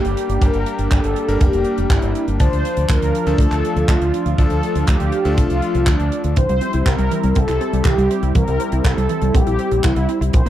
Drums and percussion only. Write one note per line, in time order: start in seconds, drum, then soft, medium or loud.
0.05 closed hi-hat medium
0.17 closed hi-hat medium
0.30 closed hi-hat medium
0.42 kick loud
0.42 closed hi-hat loud
0.54 closed hi-hat medium
0.66 closed hi-hat medium
0.79 closed hi-hat medium
0.91 kick loud
0.91 clap loud
0.91 closed hi-hat loud
1.04 closed hi-hat medium
1.16 closed hi-hat medium
1.29 closed hi-hat medium
1.41 kick loud
1.41 closed hi-hat loud
1.53 closed hi-hat medium
1.64 closed hi-hat medium
1.78 closed hi-hat medium
1.90 kick loud
1.90 clap loud
1.90 closed hi-hat medium
2.02 closed hi-hat medium
2.15 closed hi-hat medium
2.28 closed hi-hat medium
2.40 kick loud
2.40 closed hi-hat loud
2.53 closed hi-hat medium
2.65 closed hi-hat medium
2.77 closed hi-hat medium
2.89 kick loud
2.89 clap loud
2.89 closed hi-hat medium
3.02 closed hi-hat medium
3.15 closed hi-hat medium
3.27 closed hi-hat medium
3.38 kick loud
3.38 closed hi-hat loud
3.52 clap soft
3.52 closed hi-hat medium
3.65 closed hi-hat medium
3.77 closed hi-hat soft
3.88 kick loud
3.88 clap loud
3.88 closed hi-hat loud
4.01 closed hi-hat soft
4.14 closed hi-hat medium
4.26 closed hi-hat soft
4.38 kick loud
4.38 closed hi-hat medium
4.50 closed hi-hat medium
4.63 closed hi-hat medium
4.75 closed hi-hat medium
4.87 kick loud
4.87 clap loud
4.87 closed hi-hat loud
5.00 closed hi-hat medium
5.12 closed hi-hat medium
5.25 closed hi-hat soft
5.38 kick loud
5.38 closed hi-hat loud
5.50 closed hi-hat medium
5.62 closed hi-hat medium
5.75 closed hi-hat medium
5.87 kick loud
5.87 clap loud
5.87 closed hi-hat medium
6.00 closed hi-hat medium
6.12 closed hi-hat medium
6.24 closed hi-hat medium
6.36 kick loud
6.36 closed hi-hat medium
6.49 closed hi-hat medium
6.61 closed hi-hat medium
6.73 closed hi-hat medium
6.86 kick loud
6.86 clap loud
6.86 closed hi-hat loud
6.98 closed hi-hat medium
7.11 closed hi-hat medium
7.23 closed hi-hat soft
7.35 kick loud
7.35 closed hi-hat medium
7.48 clap soft
7.48 closed hi-hat soft
7.61 closed hi-hat medium
7.73 closed hi-hat medium
7.85 kick loud
7.85 clap loud
7.85 closed hi-hat loud
7.98 closed hi-hat medium
8.11 closed hi-hat medium
8.23 closed hi-hat soft
8.35 kick loud
8.35 closed hi-hat loud
8.48 closed hi-hat medium
8.60 closed hi-hat medium
8.72 closed hi-hat medium
8.84 kick loud
8.84 clap loud
8.84 closed hi-hat loud
8.98 closed hi-hat medium
9.09 closed hi-hat medium
9.22 closed hi-hat medium
9.35 kick loud
9.35 closed hi-hat loud
9.47 closed hi-hat medium
9.59 closed hi-hat medium
9.71 closed hi-hat medium
9.84 kick loud
9.84 clap loud
9.84 closed hi-hat medium
9.96 closed hi-hat medium
10.09 closed hi-hat medium
10.22 closed hi-hat medium
10.33 kick loud
10.33 closed hi-hat loud